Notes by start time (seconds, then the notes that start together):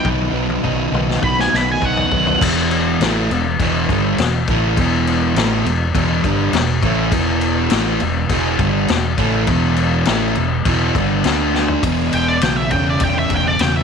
0.04 B1 B2 D#3 F#3 B3 D#4, kick, high tom
0.20 high tom
0.32 B1 B2 D#3 F#3 B3 D#4
0.50 high tom
0.63 B1 B2 D#3 F#3 B3 D#4, kick
0.92 B1 B2 D#3 F#3 B3 D#4, mid tom
1.10 snare
1.21 B1 B2 D#3 F#3 B3 D#4 B5, kick
1.39 G#5, snare
1.52 B1 B2 D#3 F#3 B3 D#4 B5, snare
1.71 G#5
1.81 B1 B2 D#3 F#3 B3 D#4 F#5, kick
1.97 floor tom
2.11 B1 B2 D#3 F#3 B3 D#4, kick
2.27 floor tom
2.41 E1 E2 B2 E3, kick, crash
2.71 crash
3.00 A1 A2 E3 A3, snare, crash
3.30 E1 E2 B2, crash
3.59 E1 E2 B2 E3, kick, crash
3.89 G1 G2 D3 G3, kick, crash
4.18 E1 E2 B2, snare, crash
4.47 A1 A2 E3 A3, kick, crash
4.77 E1 E2 B2 E3, kick, crash
5.07 crash
5.35 A1 A2 E3 A3, snare, crash
5.65 E1 E2 B2, crash
5.95 E1 E2 B2 E3, kick, crash
6.24 G1 G2 D3 G3, kick, crash
6.53 E1 E2 B2, snare, crash
6.82 A1 A2 E3 A3, kick, crash
7.11 E1 E2 B2 E3, kick, crash
7.41 crash
7.70 A1 A2 E3 A3, snare, crash
8.00 E1 E2 B2, crash
8.29 E1 E2 B2 E3, kick, crash
8.59 G1 G2 D3 G3, kick, crash
8.88 E1 E2 B2, snare, crash
9.18 A1 A2 E3 A3, kick, crash
9.47 E1 E2 B2 E3, kick, crash
9.76 crash
10.05 A1 A2 E3 A3, snare, crash
10.35 E1 E2 B2, crash
10.65 E1 E2 B2 E3, kick, crash
10.95 G1 G2 D3 G3, kick, crash
11.24 D2 D3 A3 D4, snare, crash
11.54 snare
11.68 floor tom
11.83 E1 E2 B2, kick, ride
12.13 E1 G5, ride
12.28 D5
12.41 B1 E2 C#3 G5, snare, ride
12.56 E5
12.71 E1 E2 C#3 G5, kick, ride
12.90 D5
13.00 E1 E2 C#3 G5, kick, ride
13.19 E5
13.30 E1, kick, ride
13.34 G5
13.47 D5
13.59 E1 E2 C#3 G5, snare, ride
13.76 E5